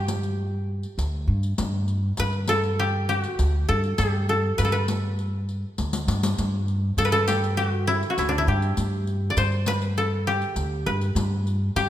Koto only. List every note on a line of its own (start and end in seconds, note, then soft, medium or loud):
0.00 0.71 D4 medium
0.00 1.46 E4 medium
0.00 1.83 G4 medium
2.20 3.98 B4 loud
2.49 3.68 A4 medium
2.79 3.09 G4 medium
3.09 3.21 G4 medium
3.21 4.04 F#4 medium
3.69 4.29 A4 medium
3.98 6.02 G4 medium
4.29 4.64 A4 medium
4.58 4.72 B4 medium
4.65 6.55 A4 medium
4.72 6.51 B4 medium
6.98 7.12 A4 loud
7.05 8.83 B4 medium
7.12 9.02 A4 medium
7.28 7.63 G4 medium
7.57 8.10 F#4 medium
7.87 8.18 E4 medium
8.10 8.54 F#4 medium
8.19 8.38 E4 medium
8.29 10.71 D4 medium
8.38 10.64 E4 medium
8.48 10.27 G4 medium
9.30 10.90 D5 medium
9.38 9.74 C5 medium
9.68 10.86 B4 medium
9.98 11.88 A4 medium
10.27 11.76 G4 medium
10.86 11.89 B4 medium
11.76 11.89 G4 loud